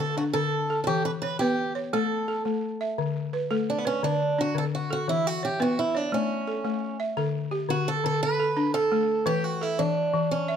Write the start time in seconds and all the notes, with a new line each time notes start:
Already playing: D3 B4
0.00 A4
0.17 D4 F#4
0.33 D3 A4
0.70 A4
0.84 E3 G4 A4
1.05 B4
1.22 B4 C#5
1.39 B3 G4 B4
1.75 C#5
1.93 A3 A4
2.28 A4
2.45 A3
2.81 E5
2.98 D3
3.33 B4
3.51 A3 A4
3.70 D4
3.78 B3
3.85 C#4 B4
4.03 D3 D4
4.39 D4 F#4
4.55 D3 A4
4.75 F#4
4.90 F#4 A4
5.08 E3 E4
5.27 F#4
5.43 G4 C#5
5.60 B3 F#4 B4
5.79 E4
5.95 D4 C#5
6.12 A3 C#4
6.47 A4
6.65 A3
7.00 E5
7.17 D3 A4
7.51 G4
7.69 D3 F#4
7.88 A4
8.04 D3 A4
8.23 B4
8.40 A4
8.57 D4
8.74 A4
8.92 A3
9.26 E3 G4 B4
9.44 F#4
9.61 E4 A4
9.79 E3 D4
10.14 E3
10.31 C#4
10.48 E5